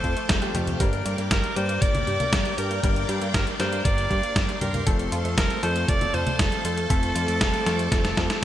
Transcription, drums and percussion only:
0.04 kick, closed hi-hat
0.17 closed hi-hat
0.29 kick, snare, closed hi-hat
0.42 closed hi-hat
0.55 closed hi-hat, high conga
0.67 closed hi-hat, high conga
0.80 kick, closed hi-hat
0.93 closed hi-hat
1.06 closed hi-hat
1.18 closed hi-hat
1.31 kick, snare, closed hi-hat
1.44 closed hi-hat
1.56 closed hi-hat
1.69 closed hi-hat
1.82 kick, closed hi-hat
1.95 closed hi-hat, high conga
2.07 closed hi-hat
2.20 closed hi-hat, high conga
2.33 kick, snare, closed hi-hat
2.45 closed hi-hat
2.58 closed hi-hat
2.71 closed hi-hat
2.83 kick, closed hi-hat
2.96 closed hi-hat
3.09 closed hi-hat
3.22 closed hi-hat
3.34 kick, snare, closed hi-hat
3.47 closed hi-hat
3.60 snare, closed hi-hat
3.73 closed hi-hat
3.85 kick, closed hi-hat
3.98 closed hi-hat
4.10 kick, closed hi-hat
4.23 closed hi-hat
4.36 kick, snare, closed hi-hat
4.49 closed hi-hat
4.61 closed hi-hat, high conga
4.74 closed hi-hat, high conga
4.87 kick, closed hi-hat
4.99 closed hi-hat
5.12 closed hi-hat
5.25 closed hi-hat
5.38 kick, snare, closed hi-hat
5.50 closed hi-hat
5.63 closed hi-hat
5.76 closed hi-hat
5.88 kick, closed hi-hat
6.01 closed hi-hat, high conga
6.14 closed hi-hat
6.27 closed hi-hat, high conga
6.39 kick, snare, closed hi-hat
6.52 closed hi-hat
6.65 closed hi-hat
6.77 closed hi-hat
6.90 kick, closed hi-hat
7.03 closed hi-hat
7.16 closed hi-hat
7.28 closed hi-hat
7.41 kick, snare, closed hi-hat
7.54 closed hi-hat
7.66 snare, closed hi-hat
7.79 closed hi-hat
7.92 kick, snare, closed hi-hat
8.05 snare, closed hi-hat
8.17 kick, snare, closed hi-hat
8.30 snare, closed hi-hat

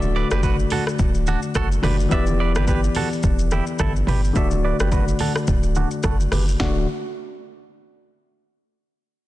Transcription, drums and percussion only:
0.02 high conga, shaker
0.31 cross-stick, high conga, shaker
0.43 kick, shaker
0.59 shaker
0.70 open hi-hat, high conga, low conga
0.87 cross-stick, shaker
0.99 kick, low conga, shaker
1.15 shaker
1.27 high conga, shaker
1.42 shaker
1.54 kick, cross-stick, high conga, shaker
1.72 shaker
1.83 cross-stick, mid tom, open hi-hat, high conga, low conga
2.00 shaker
2.11 kick, shaker
2.26 high conga, shaker
2.55 cross-stick, high conga, shaker
2.67 kick, shaker
2.84 shaker
2.95 open hi-hat, high conga, low conga
3.13 shaker
3.23 kick, low conga, shaker
3.39 shaker
3.51 cross-stick, high conga, shaker
3.67 shaker
3.79 kick, cross-stick, high conga, shaker
3.96 shaker
4.07 mid tom, open hi-hat, high conga, low conga
4.24 shaker
4.36 kick, shaker
4.51 high conga, shaker
4.80 cross-stick, high conga, shaker
4.92 kick, shaker
5.08 shaker
5.19 open hi-hat, high conga, low conga
5.36 cross-stick, shaker
5.47 kick, low conga, shaker
5.63 shaker
5.75 high conga, shaker
5.91 shaker
6.03 kick, cross-stick, high conga, shaker
6.20 shaker
6.32 cross-stick, open hi-hat, high conga, low conga, shaker
6.48 shaker
6.60 kick, snare, high conga

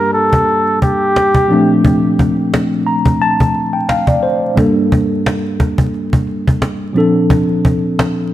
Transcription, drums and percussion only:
0.15 cajon slap
0.33 cajon bass
0.49 cajon slap
0.82 cajon bass
1.16 cajon slap
1.34 cajon bass
1.51 cajon slap
1.85 cajon bass
2.19 cajon bass, cajon slap
2.37 cajon slap
2.54 cajon slap
2.88 cajon slap
3.05 cajon bass
3.22 cajon slap
3.40 cajon bass
3.54 cajon slap
3.89 cajon slap
4.07 cajon bass
4.24 cajon slap
4.57 cajon bass
4.92 cajon bass
5.26 cajon slap
5.60 cajon bass, cajon slap
5.78 cajon bass
5.94 cajon slap
6.13 cajon bass
6.27 cajon slap
6.47 cajon bass
6.62 cajon slap
6.96 cajon slap
7.30 cajon bass
7.65 cajon bass
7.99 cajon slap

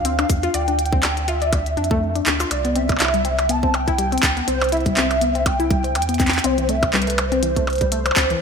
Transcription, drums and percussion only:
0.05 closed hi-hat
0.19 closed hi-hat, percussion blips
0.30 kick, closed hi-hat, cabasa
0.43 closed hi-hat
0.54 closed hi-hat
0.68 closed hi-hat
0.79 closed hi-hat
0.86 closed hi-hat
0.93 kick
1.03 clap, closed hi-hat, percussion blips
1.17 closed hi-hat
1.28 closed hi-hat
1.42 closed hi-hat
1.53 kick, closed hi-hat, percussion blips
1.66 closed hi-hat
1.77 closed hi-hat
1.84 closed hi-hat
1.91 kick
2.16 closed hi-hat
2.26 clap, closed hi-hat
2.40 closed hi-hat, cabasa, percussion blips
2.51 closed hi-hat, percussion blips
2.65 closed hi-hat
2.76 closed hi-hat
2.89 kick, closed hi-hat, percussion blips
2.92 percussion blips
2.97 clap, closed hi-hat, percussion blips
3.00 percussion blips
3.05 percussion blips
3.08 percussion blips
3.14 closed hi-hat
3.25 closed hi-hat
3.39 closed hi-hat, percussion blips
3.49 closed hi-hat
3.63 kick
3.74 closed hi-hat, percussion blips
3.88 kick, closed hi-hat
3.99 closed hi-hat
4.12 closed hi-hat
4.18 closed hi-hat
4.23 kick, clap, cabasa, percussion blips
4.37 closed hi-hat
4.48 closed hi-hat
4.62 closed hi-hat, percussion blips
4.64 closed hi-hat
4.69 closed hi-hat
4.72 closed hi-hat
4.77 closed hi-hat
4.81 closed hi-hat
4.86 kick, closed hi-hat
4.97 clap, closed hi-hat
5.11 closed hi-hat, percussion blips
5.21 closed hi-hat
5.35 closed hi-hat
5.46 kick, closed hi-hat, percussion blips
5.60 closed hi-hat
5.71 kick, closed hi-hat
5.84 closed hi-hat
5.95 closed hi-hat, percussion blips
6.02 closed hi-hat
6.09 closed hi-hat
6.14 closed hi-hat
6.20 kick, clap, closed hi-hat, cabasa
6.27 clap, closed hi-hat
6.33 clap, closed hi-hat
6.39 closed hi-hat
6.44 closed hi-hat
6.58 closed hi-hat
6.69 closed hi-hat
6.83 kick, closed hi-hat, percussion blips
6.93 clap, closed hi-hat
7.02 closed hi-hat
7.07 closed hi-hat
7.10 closed hi-hat
7.18 closed hi-hat, percussion blips
7.32 closed hi-hat
7.43 closed hi-hat
7.56 kick, closed hi-hat
7.67 closed hi-hat, percussion blips
7.70 closed hi-hat
7.73 closed hi-hat
7.75 closed hi-hat
7.78 closed hi-hat
7.81 kick, closed hi-hat
7.92 closed hi-hat
8.06 closed hi-hat, percussion blips
8.11 percussion blips
8.16 kick, clap, cabasa, percussion blips
8.23 percussion blips
8.30 closed hi-hat

